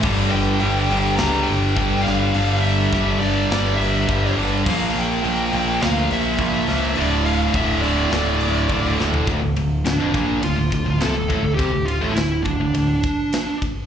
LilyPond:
<<
  \new Staff \with { instrumentName = "Lead electric guitar" } { \time 4/4 \key d \minor \tempo 4 = 104 r8 g''4. bes''8 g''4 f''8~ | f''8 e''4 d''4 e''4 r8 | f''8 g''4. f''8 e''4. | d''8 f''8 e''8 d''2 r8 |
r4 d'4 f'4 a'4 | g'8 f'8 e'8 d'2 r8 | }
  \new Staff \with { instrumentName = "Distorted electric guitar" } { \clef bass \time 4/4 \key d \minor <g, d g>1 | <g, d g>1 | <bes, f bes>1 | <d, a, d>1 |
r1 | r1 | }
  \new Staff \with { instrumentName = "Distorted electric guitar" } { \clef bass \time 4/4 \key d \minor <g, d g>4 <g, d g>8 <g, d g>8 <g, d g>4 <g, d g>8 <g, d g>8 | <g, d g>4 <g, d g>8 <g, d g>8 <g, d g>4 <g, d g>8 <g, d g>8 | <bes, f bes>4 <bes, f bes>8 <bes, f bes>8 <bes, f bes>4 <bes, f bes>8 <bes, f bes>8 | <d, a, d>4 <d, a, d>8 <d, a, d>8 <d, a, d>4 <d, a, d>8 <d, a, d>8 |
d,16 d,16 d,8 d,16 f,16 bes,8 d,16 d,16 d,16 d,16 c16 d,16 a,16 d,16 | c16 d,8 a,16 d,8 d,16 d,16 d,8 r4. | }
  \new Staff \with { instrumentName = "Distorted electric guitar" } { \clef bass \time 4/4 \key d \minor <g, d g>4 <g, d g>8 <g, d g>8 <g, d g>4 <g, d g>8 <g, d g>8 | <g, d g>4 <g, d g>8 <g, d g>8 <g, d g>4 <g, d g>8 <g, d g>8 | <bes, f bes>4 <bes, f bes>8 <bes, f bes>8 <bes, f bes>4 <bes, f bes>8 <bes, f bes>8 | <d, a, d>4 <d, a, d>8 <d, a, d>8 <d, a, d>4 <d, a, d>8 <d, a, d>8 |
d,16 d,16 d,8 d,16 f,16 bes,8 d,16 d,16 d,16 d,16 c16 d,16 a,16 d,16 | c16 d,8 a,16 d,8 d,16 d,16 d,8 r4. | }
  \new Staff \with { instrumentName = "Picked electric bass" } { \clef bass \time 4/4 \key d \minor g,,8 g,,8 g,,8 g,,8 cis,8 g,,8 g,,8 g,,8 | g,,4 g,,4 g,,8 g,,8 g,,8 g,,8 | bes,,8 bes,,8 bes,,8 bes,,8 d,8 bes,,8 bes,,8 cis,8 | d,,4 d,,4 d,,8 d,,8 d,,8 d,,8 |
d,,16 d,,16 d,,8 d,,16 f,,16 bes,,8 d,,16 d,,16 d,,16 d,,16 c,16 d,,16 a,,16 d,,16 | c,16 d,,8 a,,16 d,,8 d,,16 d,,16 d,,8 r4. | }
  \new DrumStaff \with { instrumentName = "Drums" } \drummode { \time 4/4 <cymc bd>8 hho8 hho8 hho8 <hho sn>8 hho8 <hho bd>8 <hho sn>8 | hho8 hho8 <hho bd sn>8 hho8 <hho sn>8 hho8 <hho bd>8 hho8 | <cymc bd>8 hho8 hho8 hho8 <hho sn>8 hho8 <hho bd>8 <hho sn>8 | hho8 hho8 <hho bd>8 hho8 <hho sn>8 hho8 <hho bd>8 sn16 tomfh16 |
<bd cymr>8 cymr8 <cymr sn>8 <bd cymr>8 cymr8 <bd cymr>8 <cymr sn>8 <bd cymr>8 | <bd cymr>8 cymr8 <cymr sn>8 <bd cymr>8 cymr8 <bd cymr>8 <cymr sn>8 <bd cymr>8 | }
>>